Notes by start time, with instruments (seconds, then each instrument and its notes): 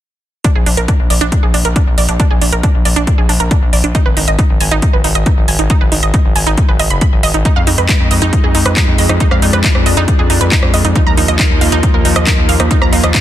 0.44 synth arpeggio sound D4, kick, closed hi-hat
0.55 analog synth bass A#1, synth arpeggio sound G#4
0.66 analog synth bass A#1, synth arpeggio sound D4, open hi-hat
0.77 analog synth bass A#1, synth arpeggio sound A#4, closed hi-hat
0.88 synth arpeggio sound D4, kick, closed hi-hat
0.99 analog synth bass A#1
1.10 analog synth bass A#1, synth arpeggio sound D5, open hi-hat
1.21 analog synth bass A#1, synth arpeggio sound D4, closed hi-hat
1.32 kick, closed hi-hat
1.43 analog synth bass A#1, synth arpeggio sound G#4
1.54 analog synth bass A#1, synth arpeggio sound D4, open hi-hat
1.65 analog synth bass A#1, synth arpeggio sound A#4, closed hi-hat
1.76 synth arpeggio sound D4, kick, closed hi-hat
1.87 analog synth bass A#1
1.98 analog synth bass A#1, synth arpeggio sound D5, open hi-hat
2.09 analog synth bass A#1, synth arpeggio sound D4, closed hi-hat
2.20 synth arpeggio sound D4, kick, closed hi-hat
2.31 analog synth bass A#1, synth arpeggio sound G#4
2.42 analog synth bass A#1, synth arpeggio sound D4, open hi-hat
2.52 analog synth bass A#1, synth arpeggio sound A#4, closed hi-hat
2.63 synth arpeggio sound D4, kick, closed hi-hat
2.74 analog synth bass A#1
2.85 analog synth bass A#1, synth arpeggio sound D5, open hi-hat
2.96 analog synth bass A#1, synth arpeggio sound D4, closed hi-hat
3.07 kick, closed hi-hat
3.18 analog synth bass A#1, synth arpeggio sound G#4
3.29 analog synth bass A#1, synth arpeggio sound D4, open hi-hat
3.40 analog synth bass A#1, synth arpeggio sound A#4, closed hi-hat
3.51 synth arpeggio sound D4, kick, closed hi-hat
3.62 analog synth bass A#1
3.73 analog synth bass A#1, synth arpeggio sound D5, open hi-hat
3.84 analog synth bass A#1, synth arpeggio sound D4, closed hi-hat
3.95 synth arpeggio sound D#4, kick, closed hi-hat
4.06 analog synth bass G#1, synth arpeggio sound B4
4.17 analog synth bass G#1, synth arpeggio sound D#4, open hi-hat
4.28 analog synth bass G#1, synth arpeggio sound D#5, closed hi-hat
4.39 synth arpeggio sound D#4, kick, closed hi-hat
4.50 analog synth bass G#1
4.60 analog synth bass G#1, synth arpeggio sound G#5, open hi-hat
4.71 analog synth bass G#1, synth arpeggio sound D#4, closed hi-hat
4.82 kick, closed hi-hat
4.93 analog synth bass G#1, synth arpeggio sound B4
5.04 analog synth bass G#1, synth arpeggio sound D#4, open hi-hat
5.15 analog synth bass G#1, synth arpeggio sound D#5, closed hi-hat
5.26 synth arpeggio sound D#4, kick, closed hi-hat
5.37 analog synth bass G#1
5.48 analog synth bass G#1, synth arpeggio sound G#5, open hi-hat
5.59 analog synth bass G#1, synth arpeggio sound D#4, closed hi-hat
5.70 synth arpeggio sound D#4, kick, closed hi-hat
5.81 analog synth bass G#1, synth arpeggio sound B4
5.92 analog synth bass G#1, synth arpeggio sound D#4, open hi-hat
6.03 analog synth bass G#1, synth arpeggio sound D#5, closed hi-hat
6.14 synth arpeggio sound D#4, kick, closed hi-hat
6.25 analog synth bass G#1
6.36 analog synth bass G#1, synth arpeggio sound G#5, open hi-hat
6.47 analog synth bass G#1, synth arpeggio sound D#4, closed hi-hat
6.58 kick, closed hi-hat
6.68 analog synth bass G#1, synth arpeggio sound B4
6.79 analog synth bass G#1, synth arpeggio sound D#5, open hi-hat
6.90 analog synth bass F#1, synth arpeggio sound B5, closed hi-hat
7.01 synth arpeggio sound B5, kick, closed hi-hat
7.12 analog synth bass G#1
7.23 analog synth bass G#1, synth arpeggio sound D#5, open hi-hat
7.34 analog synth bass G#1, synth arpeggio sound D#4, closed hi-hat
7.45 analog synth pad F3 G#3 D#4, synth arpeggio sound D#4, kick, closed hi-hat
7.56 analog synth bass F2, synth arpeggio sound F5
7.67 analog synth bass F2, synth arpeggio sound D#4, open hi-hat
7.78 analog synth bass F2, synth arpeggio sound B4, closed hi-hat
7.89 synth arpeggio sound D#4, kick, clap, closed hi-hat
8.00 analog synth bass F2
8.11 analog synth bass F2, synth arpeggio sound D#5, open hi-hat
8.22 analog synth bass F2, synth arpeggio sound D#4, closed hi-hat
8.33 kick, closed hi-hat
8.44 analog synth bass F2, synth arpeggio sound G#4
8.55 analog synth bass F2, synth arpeggio sound D#4, open hi-hat
8.66 analog synth bass F2, synth arpeggio sound B4, cross-stick, closed hi-hat
8.77 synth arpeggio sound D#4, kick, clap, closed hi-hat
8.88 analog synth bass F2
8.98 analog synth bass F2, synth arpeggio sound D#5, open hi-hat
9.09 analog synth bass F2, synth arpeggio sound D#4, cross-stick, closed hi-hat
9.20 analog synth pad D4, synth arpeggio sound D#4, kick, closed hi-hat
9.31 analog synth bass F2, synth arpeggio sound F5, cross-stick
9.42 analog synth bass F2, synth arpeggio sound D#4, open hi-hat
9.53 analog synth bass F2, synth arpeggio sound B4, cross-stick, closed hi-hat
9.64 synth arpeggio sound D#4, kick, clap, closed hi-hat
9.75 analog synth bass F2, cross-stick
9.86 analog synth bass F2, synth arpeggio sound D#5, open hi-hat
9.97 analog synth bass F2, synth arpeggio sound D#4, closed hi-hat
10.08 kick, closed hi-hat
10.19 analog synth bass F2, synth arpeggio sound G#4
10.30 analog synth bass F2, synth arpeggio sound D#4, open hi-hat
10.41 analog synth bass F2, synth arpeggio sound B4, closed hi-hat
10.52 synth arpeggio sound D#4, kick, clap, closed hi-hat
10.63 analog synth bass F2, cross-stick
10.74 analog synth bass F2, synth arpeggio sound D#5, open hi-hat
10.85 analog synth bass F2, synth arpeggio sound D#4, closed hi-hat
10.95 analog synth pad A#3 D#4, synth arpeggio sound D#4, kick, closed hi-hat
11.06 analog synth bass D#2, synth arpeggio sound A#5
11.17 analog synth bass D#2, synth arpeggio sound D#4, open hi-hat
11.28 analog synth bass D#2, synth arpeggio sound D#5, closed hi-hat
11.39 synth arpeggio sound D#4, kick, clap, closed hi-hat
11.50 analog synth bass D#2
11.61 analog synth bass D#2, synth arpeggio sound F5, open hi-hat
11.72 analog synth bass D#2, synth arpeggio sound D#4, closed hi-hat
11.83 kick, closed hi-hat
11.94 analog synth bass D#2, synth arpeggio sound A#4
12.05 analog synth bass D#2, synth arpeggio sound D#4, open hi-hat
12.16 analog synth bass D#2, synth arpeggio sound D#5, cross-stick, closed hi-hat
12.27 synth arpeggio sound D#4, kick, clap, closed hi-hat
12.38 analog synth bass D#2
12.49 analog synth bass D#2, synth arpeggio sound F5, open hi-hat
12.60 analog synth bass D#2, synth arpeggio sound D#4, cross-stick, closed hi-hat
12.71 synth arpeggio sound D#4, analog synth pad F4, kick, closed hi-hat
12.82 analog synth bass D#2, synth arpeggio sound A#5, cross-stick
12.93 analog synth bass D#2, synth arpeggio sound D#4, open hi-hat
13.03 analog synth bass D#2, synth arpeggio sound D#5, cross-stick, closed hi-hat
13.14 synth arpeggio sound D#4, kick, clap, closed hi-hat